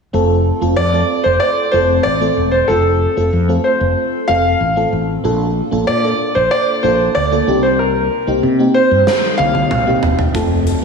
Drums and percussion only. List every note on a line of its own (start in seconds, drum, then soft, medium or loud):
9.07 snare medium
9.39 high tom medium
9.55 high tom medium
9.71 mid tom medium
10.03 floor tom medium
10.19 floor tom medium
10.35 kick medium
10.35 closed hi-hat medium
10.67 closed hi-hat medium